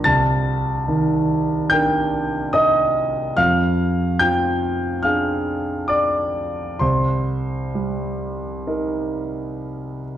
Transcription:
0.04 C2 A5 A6
0.88 D#3
1.70 D4 A#4 G5 G6
2.53 D#5 D#6
3.37 F2 F5 F6
4.19 F3 G5 G6
5.03 D4 G#4 F5 F6
5.88 D5 D6
6.79 C2 C5 C6
7.75 G3
8.67 D#4 A#4

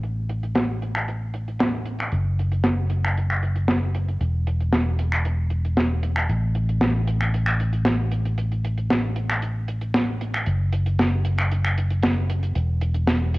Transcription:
Already playing: A1
0.03 closed hi-hat
0.29 closed hi-hat
0.43 closed hi-hat
0.55 snare, closed hi-hat
0.82 closed hi-hat
0.95 finger snap, closed hi-hat
1.08 closed hi-hat
1.34 closed hi-hat
1.48 closed hi-hat
1.59 snare, closed hi-hat
1.86 closed hi-hat
1.99 finger snap, closed hi-hat
2.12 F#1, closed hi-hat
2.39 closed hi-hat
2.52 closed hi-hat
2.64 snare, closed hi-hat
2.90 closed hi-hat
3.04 finger snap, closed hi-hat
3.17 closed hi-hat
3.30 finger snap
3.43 closed hi-hat
3.56 closed hi-hat
3.68 snare, closed hi-hat
3.95 closed hi-hat
4.08 closed hi-hat
4.21 E1, closed hi-hat
4.47 closed hi-hat
4.61 closed hi-hat
4.73 snare, closed hi-hat
4.99 closed hi-hat
5.12 finger snap, closed hi-hat
5.25 closed hi-hat
5.50 closed hi-hat
5.65 closed hi-hat
5.77 snare, closed hi-hat
6.03 closed hi-hat
6.16 finger snap, closed hi-hat
6.29 A1, closed hi-hat
6.55 closed hi-hat
6.69 closed hi-hat
6.81 snare, closed hi-hat
7.07 closed hi-hat
7.21 finger snap, closed hi-hat
7.34 closed hi-hat
7.46 finger snap
7.60 closed hi-hat
7.73 closed hi-hat
7.85 snare, closed hi-hat
8.11 closed hi-hat
8.25 closed hi-hat
8.38 closed hi-hat
8.52 closed hi-hat
8.64 closed hi-hat
8.78 closed hi-hat
8.90 snare, closed hi-hat
9.16 closed hi-hat
9.30 finger snap, closed hi-hat
9.42 closed hi-hat
9.68 closed hi-hat
9.81 closed hi-hat
9.94 snare, closed hi-hat
10.21 closed hi-hat
10.34 finger snap, closed hi-hat
10.46 F#1, closed hi-hat
10.73 closed hi-hat
10.86 closed hi-hat
10.99 snare, closed hi-hat
11.25 closed hi-hat
11.38 finger snap, closed hi-hat
11.51 closed hi-hat
11.65 finger snap
11.78 closed hi-hat
11.91 closed hi-hat
12.03 snare, closed hi-hat
12.30 closed hi-hat
12.43 closed hi-hat
12.55 E1, closed hi-hat
12.81 closed hi-hat
12.94 closed hi-hat
13.07 snare, closed hi-hat
13.34 closed hi-hat

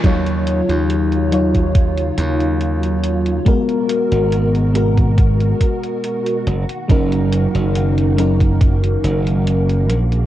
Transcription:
0.03 D#2 C#3 F#3 D#4 F4 C#5, kick, closed hi-hat
0.26 closed hi-hat
0.47 closed hi-hat
0.69 D#2, closed hi-hat
0.90 closed hi-hat
1.12 closed hi-hat
1.31 F#3 D#4 F4 C#5, closed hi-hat
1.55 kick, closed hi-hat
1.75 kick, closed hi-hat
1.98 closed hi-hat
2.18 D#2, closed hi-hat
2.40 closed hi-hat
2.61 closed hi-hat
2.83 closed hi-hat
3.04 closed hi-hat
3.26 closed hi-hat
3.45 B2 G#3 B3 F#4 A#4, kick, closed hi-hat
3.69 closed hi-hat
3.90 closed hi-hat
4.12 G#1, closed hi-hat
4.32 closed hi-hat
4.55 closed hi-hat
4.74 G#3 B3 F#4 A#4, closed hi-hat
4.97 kick, closed hi-hat
5.18 kick, closed hi-hat
5.41 closed hi-hat
5.61 kick, closed hi-hat
5.83 closed hi-hat
6.04 closed hi-hat
6.26 closed hi-hat
6.46 F#1 D#3 A#3, closed hi-hat
6.69 closed hi-hat
6.88 F#1 F#3 C#4 D#4 A#4, kick, closed hi-hat
7.12 closed hi-hat
7.32 closed hi-hat
7.55 F#1, closed hi-hat
7.75 closed hi-hat
7.98 closed hi-hat
8.17 F#3 C#4 D#4 A#4, closed hi-hat
8.40 kick, closed hi-hat
8.61 kick, closed hi-hat
8.84 closed hi-hat
9.04 F#1, closed hi-hat
9.27 closed hi-hat
9.47 closed hi-hat
9.69 closed hi-hat
9.89 A#1 C#3 G#4, closed hi-hat
10.12 closed hi-hat

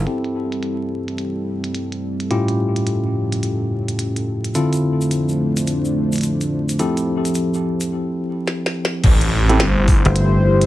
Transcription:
0.06 G3 C4 E4 G4 A4, closed hi-hat
0.24 closed hi-hat
0.52 closed hi-hat
0.63 closed hi-hat
1.08 closed hi-hat
1.18 closed hi-hat
1.64 closed hi-hat
1.75 closed hi-hat
1.92 closed hi-hat
2.20 closed hi-hat
2.31 A2 F3 C#4 E4 F4 G4, closed hi-hat
2.48 closed hi-hat
2.76 closed hi-hat
2.87 closed hi-hat
3.32 closed hi-hat
3.43 closed hi-hat
3.88 closed hi-hat
3.99 closed hi-hat
4.16 closed hi-hat
4.44 closed hi-hat
4.55 D3 F3 A3 C4 D4 E4 F4 A4 C5, closed hi-hat, shaker
4.73 closed hi-hat, shaker
5.01 shaker
5.11 closed hi-hat, shaker
5.29 shaker
5.57 closed hi-hat, shaker
5.67 closed hi-hat, shaker
5.85 shaker
6.12 closed hi-hat, shaker
6.16 closed hi-hat
6.18 closed hi-hat
6.21 closed hi-hat, shaker
6.23 closed hi-hat
6.41 closed hi-hat, shaker
6.69 closed hi-hat, shaker
6.79 F3 C4 E4 G4 A4, closed hi-hat, shaker
6.97 closed hi-hat, shaker
7.25 closed hi-hat, shaker
7.34 closed hi-hat, shaker
7.54 shaker
7.81 closed hi-hat, shaker
8.48 snare
8.66 snare
8.85 snare
9.04 A1 A3 E4 G4 C5, kick, closed hi-hat, crash, impact
9.21 closed hi-hat
9.49 C4 E4 G4 A4, closed hi-hat
9.60 G1, snare, closed hi-hat
9.88 kick, open hi-hat
10.05 G1, closed hi-hat
10.16 closed hi-hat
10.62 closed hi-hat

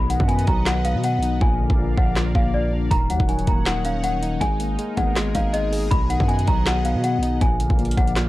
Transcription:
Already playing: B1 B2 B3 B4 D#5 F#5
0.10 D#3 F#5, closed hi-hat
0.20 F#2, kick
0.28 B2 G#5, closed hi-hat
0.39 closed hi-hat
0.47 B1 F#3 A#5, kick, closed hi-hat
0.66 B2 F#5, snare, clap, closed hi-hat
0.85 B3 F5, closed hi-hat
0.95 B2
1.04 B2 F#5, closed hi-hat
1.18 B1
1.23 D#4, closed hi-hat
1.41 A#1 A#2 A#3 A#4 D5 F5 G#5, kick
1.60 D3
1.70 A#1, kick
1.79 A#2
1.97 A#1 F3 F#5, kick
2.16 A#2, snare, clap
2.35 A#1 A#3 F5, kick
2.54 A#2 D5
2.72 D4
2.91 D#1 D#3 D#4 C#5 F#5 A#5, kick, closed hi-hat
3.10 D#2 F#3 F#5, closed hi-hat
3.20 D#1, kick
3.29 D#3 G#5, closed hi-hat
3.39 closed hi-hat
3.47 D#1 A#3 A#5, kick, closed hi-hat
3.66 D#3 F#5, snare, clap, closed hi-hat
3.85 C#4 F5, closed hi-hat
4.04 D#3 F#5, closed hi-hat
4.22 D#4, closed hi-hat
4.41 G#1 G#3 G#4 A#4 G#5, kick, closed hi-hat
4.60 A#3, closed hi-hat
4.79 G#3, closed hi-hat
4.97 G#1 B3 F#5, kick, closed hi-hat
5.16 G#3, snare, clap, closed hi-hat
5.35 G#1 D#4 F5, kick, closed hi-hat
5.53 G#3 D#5, closed hi-hat
5.72 G#4, open hi-hat
5.91 B1 B2 B3 D#5 F#5 B5, kick, closed hi-hat
6.10 D#3 F#5, closed hi-hat
6.20 F#2, kick
6.28 B2 G#5, closed hi-hat
6.39 closed hi-hat
6.47 B1 F#3 A#5, kick, closed hi-hat
6.66 B2 F#5, snare, clap, closed hi-hat
6.85 B3 F5, closed hi-hat
6.95 B2
7.04 B2 F#5, closed hi-hat
7.18 B1
7.23 D#4, closed hi-hat
7.41 A#1 A#2 A#3 A#4 D5 F5 G#5, kick, closed hi-hat
7.60 D3, closed hi-hat
7.70 A#1, kick
7.79 A#2, closed hi-hat
7.85 closed hi-hat
7.91 closed hi-hat
7.97 A#1 F3 F#5, kick, closed hi-hat
8.08 closed hi-hat
8.16 A#2, snare, clap, closed hi-hat

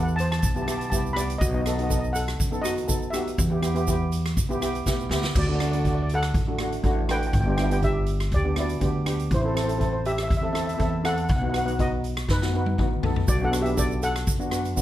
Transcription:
Already playing: E2 B3 E4 A4
0.03 F#5
0.08 shaker
0.16 A5, closed hi-hat, shaker
0.20 C5 A5
0.31 A5, cross-stick, closed hi-hat, shaker
0.39 A5, kick, closed hi-hat
0.43 B1 A5, shaker
0.55 B3 E4 G4 A5, shaker
0.62 A5
0.66 B3 E4 G4, cross-stick, closed hi-hat, shaker
0.71 A5
0.78 A5, closed hi-hat
0.82 A5, shaker
0.90 C2 B3 E4 G4 A5, kick, closed hi-hat, shaker
0.99 A5
1.06 shaker
1.13 B3 E4 G4 D5 B5, cross-stick, closed hi-hat
1.18 shaker
1.30 closed hi-hat, shaker
1.38 B1 F#4 D#5, kick, closed hi-hat, shaker
1.45 D#5
1.53 B3 D#4 F#4 D#5
1.61 B3 D#5
1.66 D#4 A4 D#5, cross-stick, closed hi-hat, shaker
1.77 B3 D#4 F#4 D#5, closed hi-hat
1.84 D#5
1.89 B3 D#4 A4 D#5, kick, closed hi-hat, shaker
1.99 D#5
2.04 shaker
2.13 A4 F#5, closed hi-hat, shaker
2.28 cross-stick, closed hi-hat, shaker
2.40 F#2, kick, closed hi-hat, shaker
2.51 B3 D#4 A4, shaker
2.62 B3 D#4 F#4 D#5, cross-stick, closed hi-hat, shaker
2.77 closed hi-hat, shaker
2.87 B1 B3 D#4 A4, kick, closed hi-hat, shaker
3.02 shaker
3.10 B3 D#4 F#4 G4 E5, cross-stick, closed hi-hat, shaker
3.28 closed hi-hat, shaker
3.38 E2, kick, closed hi-hat, shaker
3.50 B3 E4 G4
3.61 B3 E4 G4, cross-stick, closed hi-hat, shaker
3.75 B3 E4 G4, closed hi-hat, shaker
3.87 B3 E4 G4, kick, closed hi-hat, shaker
4.12 closed hi-hat, shaker
4.26 cross-stick, closed hi-hat, shaker
4.37 B1, kick, closed hi-hat, shaker
4.49 B3 E4 G4, shaker
4.60 B3 E4 G4, cross-stick, closed hi-hat, shaker
4.75 closed hi-hat, shaker
4.86 B1 B3 E4 G4, kick, snare, shaker
5.00 shaker
5.09 D2 B3 E4 G4, snare, shaker
5.24 snare, shaker
5.35 D2 F#4 D5, kick, crash
5.47 A3 D4 F#4 D5
5.55 D5
5.60 A3 D4 F#4 D5, cross-stick, closed hi-hat
5.71 A3 D4 F#4 D5, closed hi-hat
5.80 D5
5.85 A3 D4 F#4 D5, kick, closed hi-hat
5.95 D5
6.02 D5
6.09 closed hi-hat
6.14 A4 F#5
6.23 cross-stick, closed hi-hat
6.34 A1, kick, closed hi-hat
6.47 A3 D4 F#4
6.59 A3 D4 F#4, cross-stick, closed hi-hat
6.72 closed hi-hat
6.83 A1 A3 D4 F#4, kick, closed hi-hat
7.08 A3 D4 F#4 B4 G5, cross-stick, closed hi-hat
7.20 G5, closed hi-hat
7.27 G5
7.33 G1 G5, kick, closed hi-hat
7.41 G5
7.46 B3 D4 G4
7.50 G5
7.57 B3 D4 E4 G5, cross-stick, closed hi-hat
7.64 G5
7.70 B3 D4 G4 G5, closed hi-hat
7.81 B3 D4 G4 E5, kick, closed hi-hat
8.07 closed hi-hat
8.20 cross-stick, closed hi-hat
8.32 D2 D5, kick, closed hi-hat
8.36 G4
8.44 B3 D4 G4
8.56 B3 D4 E4, cross-stick, closed hi-hat
8.60 F#4 D5
8.69 closed hi-hat
8.80 D2 B3 D4 G4, kick, closed hi-hat
9.05 B3 D4 G4, cross-stick, closed hi-hat
9.20 closed hi-hat
9.31 A1 C5, kick, closed hi-hat
9.35 E4
9.42 C4 E4 A4 C5
9.48 C5
9.54 C4 E4 A4 C5, cross-stick, closed hi-hat
9.64 C4 E4 C5
9.68 A4 C5, closed hi-hat
9.78 C4 E4 A4 C5, kick, closed hi-hat
9.85 C5
9.93 C5
10.05 G4 E5, closed hi-hat
10.12 E5
10.18 cross-stick, closed hi-hat
10.23 E5
10.28 E2 E5, kick, closed hi-hat
10.37 E5
10.42 C4 E4 A4 E5
10.53 C4 E4 A4 E5, cross-stick, closed hi-hat
10.61 E5
10.67 E5, closed hi-hat
10.74 C4 E4 E5
10.79 E2 A4 E5, kick, closed hi-hat
10.90 E5
11.03 C4 E4 A4 F#5, cross-stick, closed hi-hat
11.14 F#5, closed hi-hat
11.23 F#5
11.29 B1 F#5, kick, closed hi-hat
11.36 F#5
11.42 B3 D#4 F#4 F#5
11.50 B3 D#4 F#5
11.54 F#4, cross-stick, closed hi-hat
11.58 F#5
11.66 B3 D#4 F#4 F#5, closed hi-hat
11.79 B3 D#4 F#4 D#5, kick, closed hi-hat
12.04 closed hi-hat
12.17 cross-stick, closed hi-hat
12.28 F#2 D#4 B4, kick, snare
12.42 B3 D#4 F#4, snare
12.53 B3 D#4 F#4 B4
12.66 high tom
12.78 A1 B3 D#4 F#4, kick, mid tom
13.03 B1 B3 D#4 A4, floor tom
13.16 floor tom
13.28 B1 F#4 D5, kick, closed hi-hat, shaker
13.41 B3 D4 F#4 A4 F#5
13.52 B3 D4 F#4, cross-stick, closed hi-hat, shaker
13.61 B3 D4 G4 E5
13.66 E4, closed hi-hat
13.76 B3 D4 F#4 A4 D5, kick, closed hi-hat, shaker
13.91 shaker
14.02 A4 F#5, closed hi-hat, shaker
14.16 cross-stick, closed hi-hat, shaker
14.27 F#2, kick, closed hi-hat, shaker
14.39 B3 D4 F#4, shaker
14.50 B3 D4 F#4, cross-stick, closed hi-hat, shaker
14.65 closed hi-hat, shaker
14.76 D2 B3 D4 F#4, kick, closed hi-hat, shaker

